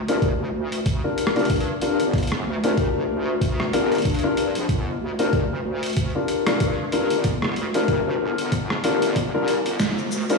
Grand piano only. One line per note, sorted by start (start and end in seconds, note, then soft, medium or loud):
0.08 0.26 D4 medium
0.08 0.26 F4 medium
0.08 0.26 G4 medium
0.08 0.26 A#4 medium
1.04 1.32 D4 medium
1.04 1.32 F4 medium
1.04 1.32 G4 medium
1.04 1.32 A#4 medium
1.36 1.53 D4 medium
1.36 1.53 F4 medium
1.36 1.53 G4 medium
1.36 1.53 A#4 medium
1.82 2.03 D4 medium
1.82 2.03 F4 medium
1.82 2.03 G4 medium
1.82 2.03 A#4 medium
2.64 3.70 D4 medium
2.64 3.70 F4 medium
2.64 3.70 G4 medium
2.64 3.70 A#4 medium
3.73 3.94 D4 medium
3.73 3.94 F4 medium
3.73 3.94 G4 medium
3.73 3.94 A#4 loud
4.23 4.41 D4 medium
4.23 4.41 F4 medium
4.23 4.41 G4 medium
4.23 4.41 A#4 loud
5.19 5.36 D4 medium
5.19 5.36 F4 medium
5.19 5.36 G4 medium
5.19 5.36 A#4 medium
6.15 6.43 D4 medium
6.15 6.43 F4 medium
6.15 6.43 G4 medium
6.15 6.43 A#4 medium
6.47 6.64 D4 medium
6.47 6.64 F4 medium
6.47 6.64 G4 medium
6.47 6.64 A#4 medium
6.92 7.13 D4 medium
6.92 7.13 F4 medium
6.92 7.13 G4 medium
6.92 7.13 A#4 medium
7.75 8.81 D4 medium
7.75 8.81 F4 medium
7.75 8.81 G4 medium
7.75 8.81 A#4 medium
8.84 9.05 D4 medium
8.84 9.05 F4 medium
8.84 9.05 G4 medium
8.84 9.05 A#4 loud
9.34 9.51 D4 medium
9.34 9.51 F4 medium
9.34 9.51 G4 medium
9.34 9.51 A#4 loud
10.30 10.38 D4 medium
10.30 10.38 F4 medium
10.30 10.38 G4 medium
10.30 10.38 A#4 medium